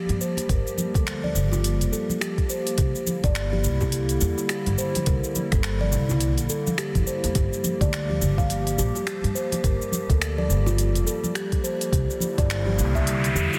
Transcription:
Already playing: ambient pad F3 G3 A#3 G4, steel tongue drum G4
0.09 upright bass G2, open hi-hat
0.21 steel tongue drum C5, cabasa
0.37 open hi-hat, high bongo, high conga, cabasa
0.49 upright bass G1, steel tongue drum A#4, kick, open hi-hat, cabasa
0.67 cabasa
0.78 high conga, cabasa
0.94 upright bass D2, steel tongue drum A4, kick, open hi-hat, high bongo, cabasa
1.07 finger snap, open hi-hat, cabasa
1.24 steel tongue drum D5, high conga
1.35 upright bass G1, cabasa
1.52 steel tongue drum F4, high bongo, low conga, cabasa
1.64 open hi-hat, cabasa
1.81 upright bass F1, open hi-hat, cabasa
1.92 steel tongue drum A4, cabasa
2.09 high conga, cabasa
2.21 steel tongue drum G4, finger snap, open hi-hat, cabasa
2.38 kick, open hi-hat, high conga
2.50 steel tongue drum C5, cabasa
2.67 open hi-hat, cabasa
2.78 upright bass C2, ambient pad D3 G3 E4, steel tongue drum G4, kick, open hi-hat, cabasa
2.95 cabasa
3.07 high conga, cabasa
3.24 upright bass G1, steel tongue drum D5, kick, open hi-hat, high bongo, cabasa
3.35 finger snap, open hi-hat, cabasa
3.53 steel tongue drum G4, high conga
3.64 upright bass C2, high bongo, cabasa
3.81 steel tongue drum G4, kick, high bongo, low conga, cabasa
3.92 open hi-hat, cabasa
4.09 open hi-hat, cabasa
4.21 upright bass E2, steel tongue drum G4, cabasa
4.38 high bongo, cabasa
4.49 steel tongue drum G4, finger snap, open hi-hat, cabasa
4.66 upright bass G1, open hi-hat
4.78 steel tongue drum C5, cabasa
4.95 open hi-hat, high bongo, high conga, cabasa
5.06 upright bass C2, steel tongue drum A#4, kick, open hi-hat, cabasa
5.24 cabasa
5.35 high conga, cabasa
5.52 upright bass G1, steel tongue drum A4, finger snap, kick, open hi-hat, high bongo, cabasa
5.63 finger snap, open hi-hat, cabasa
5.81 steel tongue drum D5, high conga
5.92 upright bass C2, low conga, cabasa
6.09 steel tongue drum E4, high bongo, low conga, cabasa
6.21 open hi-hat, cabasa
6.38 upright bass A#1, open hi-hat, cabasa
6.50 steel tongue drum A4, cabasa
6.67 high conga, cabasa
6.78 steel tongue drum G4, finger snap, open hi-hat, cabasa
6.95 upright bass G1, kick, open hi-hat, high conga, cabasa
7.07 steel tongue drum C5, cabasa
7.24 upright bass E2, open hi-hat, cabasa
7.35 upright bass G1, ambient pad F3 G3 G4, steel tongue drum G4, kick, open hi-hat, cabasa
7.53 cabasa
7.64 high conga, cabasa
7.81 upright bass D2, steel tongue drum D5, kick, open hi-hat, high bongo, cabasa
7.93 finger snap, open hi-hat, cabasa
8.10 steel tongue drum G4, high conga
8.21 upright bass G1, high bongo, cabasa
8.38 steel tongue drum F5, kick, high bongo, low conga, cabasa
8.50 open hi-hat, cabasa
8.67 open hi-hat, cabasa
8.78 upright bass A#1, steel tongue drum G4, cabasa
8.95 high bongo, cabasa
9.07 steel tongue drum G4, finger snap, open hi-hat, cabasa
9.24 upright bass G2, open hi-hat
9.35 steel tongue drum C5, cabasa
9.52 open hi-hat, high bongo, high conga, cabasa
9.64 upright bass G1, steel tongue drum A#4, kick, open hi-hat, cabasa
9.82 cabasa
9.92 high conga, cabasa
10.10 upright bass D2, steel tongue drum A4, kick, open hi-hat, high bongo, cabasa
10.22 finger snap, open hi-hat, cabasa
10.38 steel tongue drum D5, high conga
10.50 upright bass G1, cabasa
10.66 steel tongue drum F4, high bongo, low conga, cabasa
10.78 open hi-hat, cabasa
10.95 upright bass F1, open hi-hat, cabasa
11.07 steel tongue drum A4, cabasa
11.24 high conga, cabasa
11.35 steel tongue drum G4, finger snap, open hi-hat, cabasa
11.52 kick, open hi-hat, high conga
11.64 steel tongue drum C5, cabasa
11.81 open hi-hat, cabasa
11.92 upright bass C2, ambient pad D3 A#3 E4, steel tongue drum G4, kick, open hi-hat, riser, cabasa
12.10 cabasa
12.20 high conga, cabasa
12.38 upright bass G1, steel tongue drum D5, kick, open hi-hat, high bongo, cabasa
12.50 finger snap, open hi-hat, cabasa
12.66 steel tongue drum G4, high conga
12.78 upright bass C2, high bongo, cabasa
12.95 steel tongue drum E5, kick, high bongo, low conga, cabasa
13.07 open hi-hat, cabasa
13.24 open hi-hat, cabasa
13.35 upright bass E2, steel tongue drum G4, cabasa
13.53 high bongo, cabasa

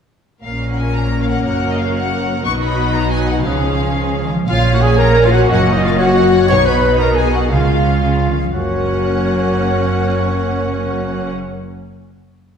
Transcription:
0.42 double bass section A#1, cello section A#2, viola section A#3 C#4, clarinet C#4, french horn section C#4, violin section A#4 C#5 F5, cor anglais A#4
0.47 french horn section A#3
0.72 violin section F#5
0.79 violin section G#5
0.95 violin section A#5
1.23 violin section F5
1.28 violin section F#5
1.44 double bass section F#1, cello section F#2, viola section F#4, violin section F#5
1.71 violin section D#5
1.78 violin section F5
1.95 violin section F#5
2.45 double bass section B1, cello section B2, viola section F#3 F#4, french horn section B3 D#4, clarinet D#4, violin section B4 D#5 C#6, cor anglais B4
2.63 violin section B5
2.95 violin section A#5
3.11 violin section G#5
3.30 violin section F#5
3.44 double bass section C#2, cello section C#3, viola section F3 C#4, french horn section G#3 C#4, clarinet C#4, violin section G#4 C#5 F5, cor anglais G#4
3.97 cello section C#3
4.23 cello section D#3
4.31 cello section F3
4.48 double bass section A#1, cello section A#2, viola section A#3 C#4, trumpet F4, french horn section F4, cor anglais F4, flute C#5, violin section F5
4.74 cor anglais F#4, trumpet F#4, french horn section F#4, violin section F#5
4.82 french horn section G#4, trumpet G#4, cor anglais G#4, violin section G#5
4.97 french horn section A#4, trumpet A#4, cor anglais A#4, violin section A#5
5.24 trumpet F4, cor anglais F4, french horn section F4, violin section F5
5.32 cor anglais F#4, trumpet F#4, french horn section F#4, violin section F#5
5.48 double bass section F#1, cello section F#2, cor anglais F#4, trumpet F#4, french horn section F#4, flute D#5, violin section F#5
5.53 violin section F#5
5.71 cor anglais D#4, trumpet D#4, violin section D#5
5.76 french horn section D#4, violin section D#5
5.82 cor anglais F4, trumpet F4, french horn section F4, violin section F5
5.86 violin section F5
5.98 cor anglais F#4, trumpet F#4, french horn section F#4, flute C#5, violin section F#5
6.17 flute D#5
6.34 flute C#5
6.48 double bass section B1, cello section B2, viola section B3 D#4, flute B4, cor anglais C#5, trumpet C#5, french horn section C#5, violin section C#6
6.65 trumpet B4, cor anglais B4, french horn section B4, violin section B5
6.99 trumpet A#4, cor anglais A#4, flute D#5, violin section A#5
7.04 french horn section A#4
7.16 trumpet G#4, cor anglais G#4, violin section G#5
7.20 french horn section G#4
7.32 cor anglais F#4, trumpet F#4, violin section F#5
7.36 french horn section F#4
7.51 double bass section C#2, cello section C#3, viola section G#3 C#4, trumpet F4, cor anglais F4, french horn section F4, violin section F5, flute F5
8.02 cello section C#3
8.29 cello section D#3
8.37 cello section F3
8.52 double bass section F#1, cello section F#2, viola section A#3 C#4, trumpet C#4, cor anglais F#4, french horn section F#4, clarinet A#4, flute C#5, violin section F#5

